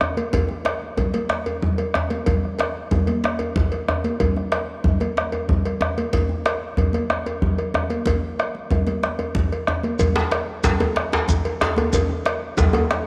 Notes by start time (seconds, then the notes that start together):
0.01 bombo rim, djembe slap, djembe tone
0.17 cowbell, high conga
0.33 bombo low, cowbell, low conga, djembe bass
0.49 djembe slap, djembe tone
0.65 bombo rim, cowbell, djembe slap
0.82 high conga
0.97 bombo low, cowbell, djembe slap, djembe tone, low conga
1.14 cowbell, high conga
1.29 bombo rim, djembe slap
1.46 cowbell, djembe tone
1.62 djembe slap, low conga, djembe bass
1.78 bombo rim, cowbell, high conga
1.94 bombo rim, djembe slap, high conga, djembe tone
2.10 cowbell, high conga
2.26 bombo rim, bombo low, cowbell, low conga, djembe bass
2.44 bombo rim, djembe slap
2.59 bombo rim, cowbell, djembe slap
2.91 bombo low, cowbell, djembe tone, low conga, djembe bass
3.07 bombo rim, cowbell, djembe slap, high conga
3.24 bombo rim, djembe slap
3.39 bombo rim, cowbell, djembe tone
3.56 bombo rim, bombo low, djembe slap, djembe bass, low conga
3.72 bombo rim, cowbell
3.88 bombo rim, djembe slap, djembe tone
4.04 cowbell, high conga
4.20 bombo rim, bombo low, cowbell, low conga, djembe bass
4.36 bombo rim, djembe slap, djembe tone
4.52 bombo rim, cowbell, djembe slap
4.84 bombo low, djembe tone, low conga, djembe bass
5.00 bombo rim, cowbell, djembe slap, high conga
5.17 bombo rim, djembe slap
5.32 bombo rim, cowbell, djembe tone
5.49 bombo rim, bombo low, djembe slap, djembe bass, low conga
5.65 bombo rim, cowbell
5.81 bombo rim, djembe slap, djembe tone
5.98 cowbell, high conga
6.13 bombo rim, bombo low, cowbell, low conga, djembe bass
6.29 djembe slap, djembe tone
6.46 bombo rim, cowbell, djembe slap
6.77 bombo low, cowbell, djembe tone, low conga, djembe bass
6.93 bombo rim, cowbell, high conga
7.10 bombo rim, djembe slap
7.26 bombo rim, cowbell, djembe tone
7.42 bombo rim, bombo low, djembe slap, djembe bass, low conga
7.58 bombo rim, cowbell
7.74 bombo rim, djembe slap, djembe tone
7.90 cowbell, high conga
8.06 bombo rim, bombo low, cowbell, low conga, djembe bass
8.39 bombo rim, cowbell, high conga
8.55 high conga
8.71 bombo low, cowbell, djembe tone, low conga, djembe bass
8.87 bombo rim, cowbell, high conga
9.03 bombo rim, djembe slap, high conga
9.19 bombo rim, cowbell, djembe slap, high conga, djembe tone
9.35 bombo rim, bombo low, low conga, djembe bass
9.52 bombo rim, cowbell
9.67 bombo rim, djembe slap, djembe tone
9.83 bombo rim, cowbell, high conga
9.99 bombo rim, bombo low, cowbell, djembe bass, low conga, shekere
10.16 bombo rim, djembe slap, djembe tone
10.31 bombo rim, cowbell, djembe slap
10.64 bombo low, cowbell, djembe slap, low conga, djembe bass, shekere
10.80 bombo rim, cowbell, djembe slap, high conga, djembe tone
10.96 bombo rim, djembe slap
11.12 bombo rim, cowbell, djembe slap, djembe tone
11.28 bombo rim, bombo low, djembe slap, djembe bass, low conga, shekere
11.45 bombo rim, cowbell
11.61 bombo rim, djembe slap, djembe tone, shekere
11.76 cowbell, high conga, djembe tone
11.93 bombo rim, bombo low, cowbell, low conga, djembe bass, shekere
12.09 bombo rim, djembe slap, djembe tone
12.25 bombo rim, cowbell, djembe slap
12.57 bombo low, cowbell, djembe tone, low conga, djembe bass, shekere
12.73 bombo rim, cowbell, djembe slap, high conga, djembe tone
12.91 bombo rim, djembe slap